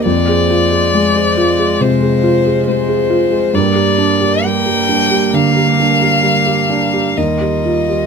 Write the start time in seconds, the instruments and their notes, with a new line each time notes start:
Already playing: cello A#3
0.04 felt piano F2, harmonium G#3 F4 C5, violin D5
0.28 felt piano G#4
0.50 felt piano F4
0.72 felt piano G#4
0.92 cello G#3, felt piano G#3
1.16 felt piano G#4
1.37 felt piano F4
1.59 felt piano G#4
1.81 felt piano C3, violin C5
2.02 felt piano G#4
2.23 felt piano F4
2.46 felt piano G#4
2.67 felt piano G#3, violin C5
2.88 felt piano G#4
3.10 felt piano F4
3.31 felt piano G#4
3.54 felt piano G2, harmonium G3 G4 A#4, cello A#3, violin D5
3.75 felt piano G4
3.98 felt piano D4
4.21 felt piano G4
4.44 felt piano G3, violin G5
4.66 felt piano G4
4.89 felt piano D4
5.11 felt piano G4
5.33 felt piano D3, violin F5
5.56 felt piano G4
5.80 felt piano D4
6.02 felt piano G4
6.23 felt piano G3
6.47 felt piano G4
6.70 felt piano D4
6.93 felt piano G4
7.17 felt piano D#2, harmonium G3 F4 A#4, cello G3, violin D#5
7.41 felt piano G4
7.65 felt piano F4
7.89 felt piano G4